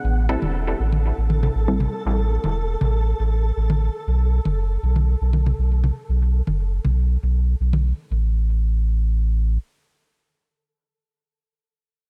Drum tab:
T1 |---o---o--o-----|---o---------o--|---o---o--o-----|---o---------o--|
T2 |-----------o--o-|------o---------|-----------o--o-|------o---------|

T1 |----------------|----------------|
T2 |----------------|----------------|